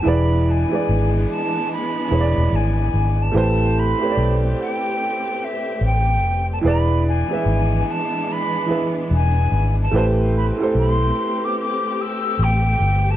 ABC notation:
X:1
M:4/4
L:1/16
Q:"Swing 16ths" 1/4=73
K:Am
V:1 name="Flute"
b2 ^g4 a2 b4 g3 a | a2 b3 z g4 e2 g3 a | b2 ^g4 a2 b3 z g3 a | a2 b2 c'3 d' d'2 e'2 g3 a |]
V:2 name="Upright piano"
[E,E^GBd]3 [E,^G,EBd]6 z [E,EGB^cd]4- [E,EGBcd] z | [A,EGBc]3 [A,EGB^cd]6- [A,EGBcd] z6 | [E,E^GBd]3 [E,^G,EBe]6 z [E,EGBe]4- [E,EGBe] z | [A,EGBc]3 [A,EGAc]6- [A,EGAc] z6 |]
V:3 name="String section"
[E,^G,B,D]16 | [A,CG]16 | [E,^G,B,D]16 | [A,CG]16 |]
V:4 name="Fingered electric bass" clef=bass
E,,,3 z ^G,,,2 z4 E,,, E,,, G,,,2 G,,,2 | A,,,3 z B,,,2 z6 A,,,2 F,,,2 | E,,,3 z ^G,,,2 z6 E,,,2 G,,,2 | A,,,3 z B,,,2 z6 A,,,2 G,,,2 |]